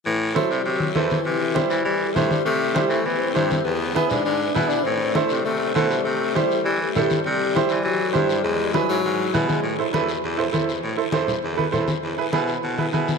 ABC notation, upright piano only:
X:1
M:4/4
L:1/8
Q:1/4=200
K:Ador
V:1 name="Upright piano"
z2 [EAc] z3 [EAc] z | z2 [EGc] z3 [EGc] z | z2 [EGc] z3 [EGc] z | z2 [E^GB] z3 [EGB] z |
z2 [EAc] z3 [EAc] z | z2 [EGc] z3 [EGA] z | z2 [EGc] z3 [EGc] z | z2 [E^GB] z3 [EGB] z |
[K:Am] z [EAc] [EAB] z2 [EAc] [EAc] z | z [EAc] [EAc] z2 [EAB] [EAc] z | z [E^GB] [EGB] z2 [EGB] [EGB] z |]